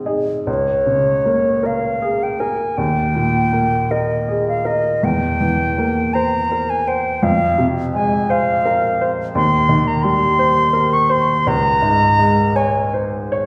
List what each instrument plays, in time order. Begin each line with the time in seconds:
Already playing: grand piano G#2 C4 D#4 G#4
0.06 grand piano D#4 G#4
0.47 grand piano C#2, flute C#5
0.86 grand piano C#3
1.25 grand piano A#3
1.63 grand piano A#4, flute F5
2.02 grand piano G#4
2.23 flute G5
2.40 grand piano A#4, flute G#5
2.77 grand piano D#2, flute G5
3.15 grand piano A#2
3.52 grand piano A#3
3.91 grand piano A#4, flute D#5
4.28 grand piano G#4
4.49 flute F5
4.65 grand piano A#4, flute D#5
5.03 grand piano E2, flute G5
5.41 grand piano E3
5.78 grand piano A#3
6.14 grand piano C5, flute A#5
6.52 grand piano A#4
6.70 flute G#5
6.87 grand piano C5, flute G5
7.22 grand piano F2, flute F5
7.58 grand piano C3
7.94 grand piano G#3, flute G#5
8.30 grand piano C5, flute F5
8.65 grand piano A#4
9.01 grand piano C5
9.35 grand piano D#2, flute C6
9.69 grand piano D#3
9.87 flute A#5
10.03 grand piano G3, flute C6
10.39 grand piano C5
10.73 grand piano A#4
10.93 flute C#6
11.09 grand piano C5, flute C6
11.47 grand piano C#2, flute A#5
11.82 grand piano G#2
12.19 grand piano G#3
12.56 grand piano C#5, flute G#5
12.94 grand piano C5
13.32 grand piano C#5